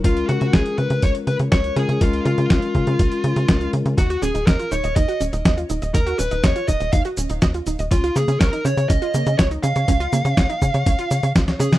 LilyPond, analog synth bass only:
\new Staff \with { instrumentName = "Analog synth bass" } { \clef bass \time 4/4 \key des \mixolydian \tempo 4 = 122 des,8 des16 des16 des,16 r16 des16 des16 des,16 r16 des16 des16 des,8 des16 des16 | des,8 des16 des16 des,16 r16 des16 des16 des,16 r16 des16 des16 des,8 des16 des16 | ees,8 ees,,16 ees,,16 ees,16 r16 ees,,16 ees,,16 ees,16 r16 ees,,16 ees,,16 ees,8 ees,,16 ees,,16 | ees,8 ees,,16 ees,,16 ees,16 r16 ees,,16 ees,,16 ees,16 r16 ees,,16 ees,,16 ees,8 ees,,16 ees,,16 |
des,8 des16 des16 des,16 r16 des16 des16 des,16 r16 des16 des16 des,8 des16 des16 | des,8 des16 des16 des,16 r16 des16 des16 des,16 r16 des16 des16 des,8 des16 des16 | }